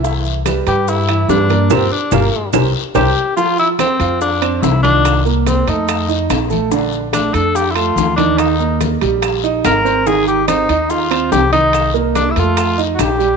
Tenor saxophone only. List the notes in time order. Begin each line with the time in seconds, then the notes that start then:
0.68 G4
0.89 E4
1.30 D4
1.73 C4
1.92 D4
2.13 A#3
2.95 G4
3.37 F4
3.59 E4
3.80 C4
4.22 D4
4.57 D4
4.61 E4
4.83 D4
5.47 C4
5.68 D#4
7.14 D4
7.33 A4
7.55 G4
7.71 E4 F4
8.16 D4
8.38 D#4
9.65 A#4
10.07 G#4
10.27 G4
10.48 D#4
10.90 F4
11.32 G4
11.52 D#4
12.15 D4
12.31 E4
12.39 F4
12.94 F#4
13.01 G4